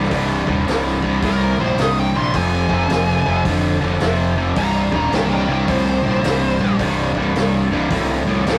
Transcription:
0.03 snare
0.11 fingered electric bass C1, overdriven electric guitar C2 G2, kick, open hi-hat
0.46 fingered electric bass D#1, overdriven electric guitar C2 G2, kick
0.66 fingered electric bass C1, overdriven electric guitar C2 G2, snare, open hi-hat
0.87 snare
1.02 overdriven electric guitar C2 G2, fingered electric bass C2, kick
1.22 overdriven electric guitar C2 A2, fingered electric bass C2, lead electric guitar A#4, kick, open hi-hat
1.58 fingered electric bass A#1, overdriven electric guitar C2 A2, lead electric guitar C5
1.78 fingered electric bass C1, overdriven electric guitar C2 G2, lead electric guitar D#5, snare, open hi-hat
1.99 lead electric guitar G5
2.14 fingered electric bass A#1, overdriven electric guitar C2 G2, lead electric guitar C6
2.34 fingered electric bass F1, overdriven electric guitar F2 C3, lead electric guitar G#5, kick, open hi-hat
2.69 fingered electric bass F1, overdriven electric guitar F2 C3, kick
2.88 fingered electric bass F1, overdriven electric guitar F2 C3, snare, open hi-hat
3.09 snare
3.25 fingered electric bass F1, overdriven electric guitar F2 C3
3.45 fingered electric bass F1, overdriven electric guitar F2 D3, kick, open hi-hat
3.80 fingered electric bass F1, overdriven electric guitar F2 D3
4.00 fingered electric bass F1, overdriven electric guitar F2 C3, snare, open hi-hat
4.36 overdriven electric guitar F2 C3
4.55 fingered electric bass C1, overdriven electric guitar C2 G2, lead electric guitar D5 A#5, kick, open hi-hat
4.75 lead electric guitar D5 A#5
4.91 fingered electric bass D#1, overdriven electric guitar C2 G2, kick
4.95 lead electric guitar D5 A#5
5.09 fingered electric bass C1, overdriven electric guitar C2 G2, open hi-hat
5.14 lead electric guitar A#4 G5, snare
5.33 lead electric guitar A#4 G5
5.47 overdriven electric guitar C2 G2, fingered electric bass C2
5.52 lead electric guitar A#4 G5
5.67 overdriven electric guitar C2 A2, fingered electric bass C2, lead electric guitar C5, kick, open hi-hat
6.03 fingered electric bass A#1, overdriven electric guitar C2 A2
6.23 fingered electric bass C1, overdriven electric guitar C2 G2, snare, open hi-hat
6.59 fingered electric bass A#1, overdriven electric guitar C2 G2
6.79 fingered electric bass C1, overdriven electric guitar C2 G2, kick, open hi-hat
7.15 fingered electric bass C1, overdriven electric guitar C2 G2, kick
7.35 fingered electric bass C1, overdriven electric guitar C2 G2, snare, open hi-hat
7.71 fingered electric bass C1, overdriven electric guitar C2 G2
7.90 fingered electric bass C1, overdriven electric guitar C2 A2, kick, open hi-hat
8.25 fingered electric bass C1, overdriven electric guitar C2 A2
8.46 fingered electric bass C1, overdriven electric guitar C2 G2, snare, open hi-hat

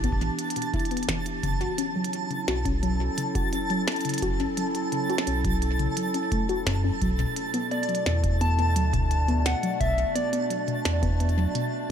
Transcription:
Already playing: sub bass A1, ambient pad E3 B3 D4 G4, synth texture A5
0.04 synth arpeggio sound B3, kick, closed hi-hat
0.13 kick
0.21 synth arpeggio sound E3, closed hi-hat
0.39 closed hi-hat
0.50 closed hi-hat
0.56 synth arpeggio sound B2, closed hi-hat
0.62 closed hi-hat
0.74 synth arpeggio sound E4, kick, closed hi-hat
0.79 closed hi-hat
0.85 closed hi-hat
0.91 synth arpeggio sound B3, closed hi-hat
0.97 closed hi-hat
1.03 closed hi-hat
1.08 synth arpeggio sound E3, kick, snare, closed hi-hat
1.26 closed hi-hat
1.43 sub bass F#1, synth arpeggio sound C#3, ambient pad F#3, kick, closed hi-hat
1.61 ambient pad C#4, synth arpeggio sound F#4, closed hi-hat
1.78 synth arpeggio sound C#4, ambient pad E4, closed hi-hat
1.96 synth arpeggio sound F#3
2.04 closed hi-hat
2.13 closed hi-hat
2.30 synth arpeggio sound C#3, closed hi-hat
2.35 ambient pad A4
2.48 sub bass B1, synth arpeggio sound F#4, snare
2.65 synth arpeggio sound C#4, kick, closed hi-hat
2.83 synth arpeggio sound F#3, closed hi-hat
3.18 synth arpeggio sound C#3, closed hi-hat
3.35 synth arpeggio sound F#4, kick, closed hi-hat
3.53 synth arpeggio sound C#4, closed hi-hat
3.70 synth arpeggio sound F#3, closed hi-hat
3.88 snare, closed hi-hat
3.92 closed hi-hat
3.96 closed hi-hat
4.01 closed hi-hat
4.05 synth arpeggio sound C#3, closed hi-hat
4.09 closed hi-hat
4.14 closed hi-hat
4.18 closed hi-hat
4.22 sub bass F#1, synth arpeggio sound F#4, kick, closed hi-hat
4.40 synth arpeggio sound C#4, closed hi-hat
4.57 synth arpeggio sound F#3, closed hi-hat
4.75 closed hi-hat
4.92 synth arpeggio sound C#3, closed hi-hat
5.10 synth arpeggio sound F#4, closed hi-hat
5.18 snare
5.27 sub bass B1, synth arpeggio sound C#4, closed hi-hat
5.45 synth arpeggio sound F#3, kick, closed hi-hat
5.62 closed hi-hat
5.79 synth arpeggio sound C#3, closed hi-hat
5.97 synth arpeggio sound F#3, closed hi-hat
6.14 synth arpeggio sound C#4, closed hi-hat
6.32 synth arpeggio sound A3, kick, closed hi-hat
6.49 synth arpeggio sound F#4, closed hi-hat
6.67 sub bass F#2, synth arpeggio sound C#4, kick, snare, closed hi-hat
6.84 synth arpeggio sound C#4
7.01 sub bass B1, ambient pad B2, synth arpeggio sound F#3, kick, closed hi-hat
7.19 synth arpeggio sound B2, closed hi-hat
7.36 closed hi-hat
7.52 ambient pad A3, synth arpeggio sound B3, closed hi-hat
7.71 synth arpeggio sound B3, soft synth lead D5, closed hi-hat
7.83 closed hi-hat
7.89 synth arpeggio sound F#3, closed hi-hat
7.95 closed hi-hat
8.06 sub bass E2, synth arpeggio sound B2, snare
8.17 ambient pad D4
8.24 kick, closed hi-hat
8.41 synth arpeggio sound B3, soft synth lead A5, closed hi-hat
8.58 synth arpeggio sound B3, closed hi-hat
8.76 sub bass D2, synth arpeggio sound F#3, closed hi-hat
8.93 synth arpeggio sound B2, ambient pad D5, kick, closed hi-hat
9.11 closed hi-hat
9.28 synth arpeggio sound B3, closed hi-hat
9.46 synth arpeggio sound B3, soft synth lead F#5, snare, closed hi-hat
9.63 synth arpeggio sound F#3, closed hi-hat
9.80 sub bass B1, synth arpeggio sound B2, soft synth lead E5, kick, closed hi-hat
9.98 closed hi-hat
10.15 synth arpeggio sound B3, soft synth lead D5, closed hi-hat
10.33 synth arpeggio sound B3, closed hi-hat
10.50 synth arpeggio sound F#3, closed hi-hat
10.68 synth arpeggio sound B2, closed hi-hat
10.85 sub bass E2, snare, closed hi-hat
11.03 synth arpeggio sound B3, kick, closed hi-hat
11.20 synth arpeggio sound B3, closed hi-hat
11.29 closed hi-hat
11.38 synth arpeggio sound F#3
11.55 synth arpeggio sound B2, closed hi-hat

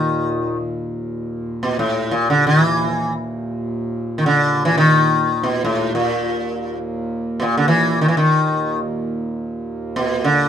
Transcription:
Already playing: harmonium D#2 A#2, sitar D#3
1.63 sitar B2
1.79 sitar A2
2.11 sitar A#2
2.30 sitar D3
2.47 sitar E3
4.18 sitar D#3
4.26 sitar D3
4.65 sitar E3
4.78 sitar D#3
5.43 sitar B2
5.65 sitar A2
5.95 sitar A#2
6.12 harmonium D#2 A#2
7.40 sitar A#2 B2
7.58 sitar D3
7.68 sitar E3
8.01 sitar D#3
8.08 sitar E3
8.17 sitar D#3
9.96 sitar B2
10.24 sitar D3

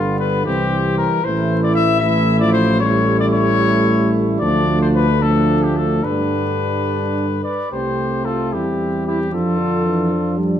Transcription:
Already playing: tuba G1, euphonium D3, french horn G3, flugelhorn B3, trumpet F4
0.20 trumpet B4
0.45 tuba C2, euphonium E3, french horn G3, flugelhorn C4, trumpet G4
0.98 trumpet A#4
1.23 tuba A1, euphonium E3, french horn A3, flugelhorn E4, trumpet C5
1.63 trumpet D5
1.75 trumpet E5
2.00 euphonium E3, french horn A3, flugelhorn E4, trumpet E5
2.39 euphonium F3, trumpet D5
2.52 trumpet C5
2.80 euphonium G3, french horn A3, flugelhorn E4, trumpet C#5
3.19 trumpet D5
3.33 trumpet C#5
4.40 tuba D2, euphonium F3, french horn A3, flugelhorn D4, trumpet D5
4.82 trumpet C5
4.95 trumpet B4
5.20 euphonium F3, french horn A3, flugelhorn D4, trumpet A4
5.63 trumpet G4
5.76 trumpet A4
6.03 tuba G2, euphonium D3, french horn G3, flugelhorn D4, trumpet B4
7.43 flugelhorn B4, trumpet D5
7.71 tuba C2, euphonium A3, french horn C4, flugelhorn G4, trumpet C5
8.25 flugelhorn F4, trumpet A4
8.52 tuba E2, euphonium G3, flugelhorn E4, trumpet G4
9.07 flugelhorn E4, trumpet G4
9.32 tuba F2, euphonium F3, french horn D4, flugelhorn F4, trumpet A4
9.58 euphonium D3
9.85 euphonium E3
10.11 euphonium F3
10.37 euphonium G3

